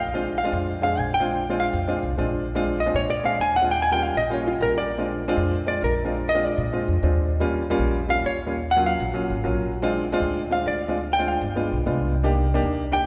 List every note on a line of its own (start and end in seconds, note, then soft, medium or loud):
0.00 0.47 A#1 medium
0.00 0.34 F5 loud
0.13 0.35 G#3 medium
0.13 0.35 C4 medium
0.13 0.35 D4 medium
0.13 0.35 F4 loud
0.38 0.65 F5 medium
0.44 0.70 G#3 medium
0.44 0.71 C4 medium
0.44 0.71 D4 medium
0.44 0.71 F4 loud
0.52 0.94 F2 loud
0.82 1.08 G#3 medium
0.82 1.09 C4 medium
0.82 1.08 D4 medium
0.82 1.09 G#4 medium
0.82 0.99 F5 medium
0.97 1.67 A#1 medium
0.97 1.13 G#5 loud
1.14 1.56 G5 loud
1.20 1.41 G#3 medium
1.20 1.41 C4 medium
1.20 1.41 D4 medium
1.20 1.41 F4 medium
1.49 1.76 G#3 medium
1.49 1.76 C4 medium
1.49 1.76 D4 medium
1.49 1.77 F4 loud
1.60 1.87 F5 loud
1.73 2.01 F2 medium
1.87 2.09 G#3 medium
1.87 2.09 C4 medium
1.87 2.09 D4 medium
1.87 2.09 F4 loud
2.03 2.17 C2 medium
2.18 2.88 A#1 medium
2.18 2.44 G#3 medium
2.18 2.45 C4 medium
2.18 2.45 D4 medium
2.18 2.45 F4 medium
2.55 2.77 G#3 loud
2.55 2.77 C4 medium
2.55 2.77 D4 medium
2.55 2.77 F4 loud
2.80 2.94 D#5 medium
2.86 3.13 G#3 medium
2.86 3.13 C4 medium
2.86 3.13 D4 medium
2.86 3.13 F4 medium
2.94 3.36 A#2 medium
2.94 3.10 C#5 medium
3.10 3.24 D5 medium
3.23 3.50 G#3 medium
3.23 3.51 C4 medium
3.23 3.51 D4 medium
3.23 3.51 G#4 medium
3.23 3.40 F5 loud
3.40 4.10 D#2 medium
3.40 3.55 G#5 loud
3.56 3.70 F#5 loud
3.61 3.69 G#3 medium
3.61 3.69 C4 medium
3.61 3.70 D4 medium
3.61 3.70 F4 medium
3.71 3.80 G5 medium
3.82 3.91 G#5 loud
3.92 4.18 G3 medium
3.92 4.19 A#3 medium
3.92 4.19 C#4 medium
3.92 4.19 F4 medium
3.92 4.03 G5 loud
4.03 4.16 F5 medium
4.15 4.57 A#1 medium
4.15 4.33 D#5 medium
4.30 4.51 G3 medium
4.30 4.51 A#3 medium
4.30 4.52 C#4 medium
4.30 4.52 F4 loud
4.30 4.46 C#5 medium
4.47 4.61 F4 medium
4.60 5.31 A#1 medium
4.60 4.87 G3 medium
4.60 4.87 A#3 medium
4.60 4.87 C#4 medium
4.60 4.87 F4 medium
4.60 4.76 A#4 medium
4.78 5.48 D5 medium
4.98 5.19 G#3 medium
4.98 5.19 C4 medium
4.98 5.20 D4 medium
4.98 5.20 F4 medium
5.28 5.55 G#3 loud
5.28 5.55 C4 loud
5.28 5.55 D4 loud
5.28 5.55 F4 loud
5.37 5.79 F2 medium
5.66 5.93 G#3 medium
5.66 5.93 C4 medium
5.66 5.93 D4 medium
5.66 5.93 F4 medium
5.66 5.82 D5 medium
5.82 6.52 A#1 medium
5.82 6.25 A#4 medium
6.04 6.25 G#3 medium
6.04 6.26 C4 medium
6.04 6.26 D4 medium
6.04 6.26 F4 medium
6.29 6.45 D#5 loud
6.34 6.61 G#3 medium
6.34 6.61 C4 medium
6.34 6.61 D4 medium
6.34 6.61 F4 medium
6.45 6.89 D5 medium
6.58 6.86 A#2 loud
6.73 6.94 G#3 medium
6.73 6.94 C4 medium
6.73 6.94 D4 medium
6.73 6.94 F4 medium
6.88 7.02 F2 medium
7.03 7.73 D#2 medium
7.03 7.29 G#3 medium
7.03 7.29 C4 medium
7.03 7.30 D4 medium
7.03 7.30 F4 medium
7.40 7.62 G3 loud
7.40 7.62 A#3 medium
7.40 7.62 C#4 medium
7.40 7.62 F4 loud
7.70 7.97 G3 loud
7.70 7.97 A#3 loud
7.70 7.97 C#4 loud
7.70 7.97 F4 loud
7.78 8.21 A#1 medium
8.08 8.35 G3 medium
8.08 8.35 A#3 medium
8.08 8.35 C#4 medium
8.08 8.35 F4 medium
8.08 8.24 F5 loud
8.24 8.94 D#2 medium
8.24 8.67 C#5 medium
8.47 8.54 G3 medium
8.47 8.54 A#3 medium
8.47 8.54 C#4 medium
8.47 8.54 F4 medium
8.71 8.85 F#5 loud
8.76 9.03 F#3 medium
8.76 9.03 A#3 medium
8.76 9.03 C#4 medium
8.76 9.03 F4 loud
8.86 9.28 F5 medium
9.00 9.28 A#1 loud
9.14 9.35 F#3 medium
9.14 9.35 A#3 medium
9.14 9.36 C#4 medium
9.14 9.36 F4 medium
9.30 9.44 G#1 medium
9.44 10.15 A#1 medium
9.44 9.71 F#3 medium
9.44 9.71 A#3 medium
9.44 9.71 C#4 medium
9.44 9.71 F4 medium
9.82 10.04 G#3 loud
9.82 10.04 C4 loud
9.82 10.04 D4 medium
9.82 10.04 F4 loud
10.12 10.39 G#3 loud
10.12 10.39 C4 loud
10.12 10.39 D4 medium
10.12 10.40 F4 loud
10.20 10.63 D2 loud
10.50 10.77 G#3 medium
10.50 10.77 C4 medium
10.50 10.77 D4 medium
10.50 10.77 F4 medium
10.50 10.66 F5 medium
10.66 11.36 D2 medium
10.66 11.09 D5 medium
10.88 10.96 G#3 medium
10.88 10.96 C4 medium
10.88 10.96 D4 medium
10.88 10.96 F4 medium
11.13 11.28 G5 loud
11.18 11.45 G#3 medium
11.18 11.45 C4 medium
11.18 11.45 D4 medium
11.18 11.45 F4 loud
11.28 11.72 F5 medium
11.41 11.69 G1 medium
11.56 11.77 G#3 medium
11.56 11.77 B3 medium
11.56 11.78 D4 medium
11.56 11.78 F4 medium
11.72 11.86 B1 medium
11.86 12.57 C2 medium
11.86 12.13 G#3 medium
11.86 12.13 B3 medium
11.86 12.13 D4 medium
11.86 12.13 F4 medium
12.23 12.45 A#3 loud
12.23 12.45 D4 medium
12.23 12.45 D#4 medium
12.23 12.45 G4 loud
12.54 12.81 A#3 loud
12.54 12.81 D4 loud
12.54 12.81 D#4 medium
12.54 12.81 G4 loud
12.62 13.04 D#2 medium
12.92 13.06 A#3 medium
12.92 13.06 D4 medium
12.92 13.06 D#4 medium
12.92 13.06 G4 medium
12.92 13.06 G5 loud